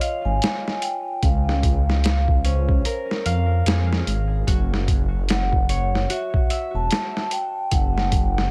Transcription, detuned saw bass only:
0.25 0.40 G#1 loud
1.23 2.82 C#2 medium
3.26 3.62 F2 medium
3.66 4.03 F2 medium
4.07 4.44 G#1 medium
4.47 6.06 F#1 loud
6.74 6.89 E1 loud
7.72 8.51 F#1 medium

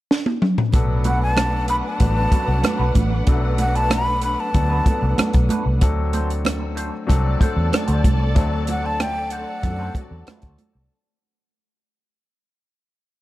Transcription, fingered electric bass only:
0.74 1.81 B1 medium
2.01 2.26 A1 medium
2.48 2.61 C2 medium
2.79 2.92 B1 medium
2.96 3.21 A1 medium
3.27 4.35 B1 medium
4.55 4.80 D2 medium
5.02 5.15 C2 medium
5.34 5.47 B1 medium
5.66 5.82 C2 medium
5.82 6.89 D2 medium
7.09 7.34 C2 medium
7.57 7.69 E2 medium
7.88 8.01 D2 medium
8.04 8.37 C2 medium
8.37 9.44 D2 medium
9.64 9.89 F#2 medium
10.11 10.23 E2 medium
10.28 muted fingered electric bass stroke soft
10.43 10.55 D2 medium
10.75 10.87 C2 medium

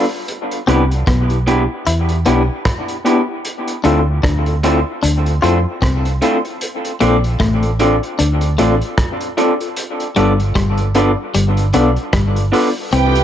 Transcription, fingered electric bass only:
0.68 1.05 C2 medium
1.08 1.66 B1 loud
1.87 2.24 E2 medium
2.27 2.48 B1 medium
3.85 4.21 D2 medium
4.24 4.82 D2 medium
5.04 5.40 D2 loud
5.43 5.64 F2 medium
5.82 6.19 C2 medium
7.02 7.38 A#1 medium
7.40 7.99 A1 medium
8.20 8.56 D2 medium
8.59 8.80 A1 medium
10.17 10.54 G1 medium
10.56 11.14 G1 medium
11.36 11.72 G1 loud
11.75 11.96 B1 medium
12.14 12.50 G1 medium
12.93 13.24 C2 loud

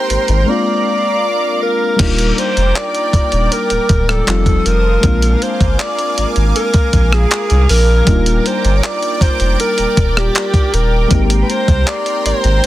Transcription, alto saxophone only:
0.00 0.50 C5 loud
0.49 1.62 D5 loud
1.63 2.40 A#4 loud
2.39 2.78 C5 loud
2.77 3.54 D5 loud
3.52 4.11 A#4 loud
4.09 4.68 A4 loud
4.67 5.44 A#4 loud
5.43 5.82 C5 loud
5.81 6.29 D5 loud
6.56 7.15 A#4 loud
7.14 7.70 G#4 loud
7.70 8.48 A#4 loud
8.47 8.79 C5 loud
8.77 8.85 C#5 medium
8.84 9.23 D5 loud
9.22 9.60 C5 loud
9.61 10.19 A#4 loud
10.18 10.76 G4 loud
10.75 11.23 A#4 loud
11.42 11.52 B4 medium
11.50 11.90 C5 loud
11.89 12.26 D5 loud
12.26 12.66 C5 loud

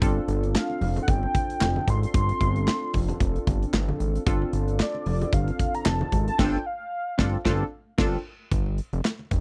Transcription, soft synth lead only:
0.56 0.99 F5 medium
1.03 1.11 F#5 medium
1.10 1.91 G5 loud
1.90 2.04 C6 loud
2.05 3.59 C6 loud
4.81 5.35 D5 loud
5.34 5.76 F5 loud
5.75 5.88 A#5 loud
5.86 6.27 A5 loud
6.28 6.38 A5 medium
6.39 6.68 G5 loud
6.66 7.72 F5 loud

